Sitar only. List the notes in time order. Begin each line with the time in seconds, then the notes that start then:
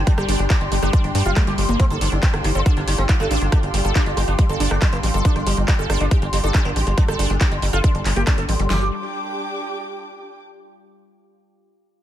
0.07 D4
0.18 G3
0.29 G3
0.39 G3
0.50 D4
0.61 G3
0.72 G3
0.83 D4
0.93 G3
1.04 G3
1.15 G3
1.26 F4
1.36 G3
1.47 G4
1.58 G3
1.69 G3
1.80 C4
1.90 D3
2.01 D3
2.12 D3
2.23 C4
2.34 D3
2.44 D3
2.55 C4
2.66 D3
2.77 D3
2.88 D3
2.98 C4
3.09 D3
3.20 A3
3.31 D3
3.42 D3
3.52 D4
3.63 G3
3.74 G3
3.85 G3
3.95 D4
4.06 G3
4.17 G3
4.28 D4
4.39 G3
4.49 G3
4.60 G3
4.71 D4
4.82 G3
4.93 A#3
5.03 G3
5.14 G3
5.25 D4
5.36 G3
5.47 G3
5.57 G3
5.68 D4
5.79 G3
5.90 G3
6.01 D4
6.11 G3
6.22 G3
6.33 G3
6.44 D4
6.54 G3
6.65 A#3
6.76 G3
6.87 G3
6.98 D4
7.08 G3
7.19 G3
7.30 G3
7.41 D4
7.52 G3
7.62 G3
7.73 F4
7.84 G3
7.95 G3
8.05 G3
8.16 G4
8.27 G3
8.38 A4
8.49 G3
8.59 G3
8.70 G4